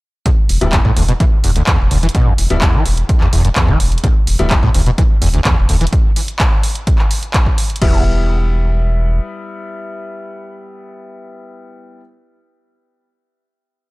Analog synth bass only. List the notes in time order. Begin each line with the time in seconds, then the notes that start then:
0.49 E1
0.61 D1
0.97 E1
1.44 E1
1.79 E1
1.91 E1
2.38 E1
2.50 D1
2.86 E1
3.33 E1
3.68 E1
3.80 E1
4.27 E1
4.39 D1
4.75 E1
5.22 E1
5.57 E1
5.69 E1
7.82 E1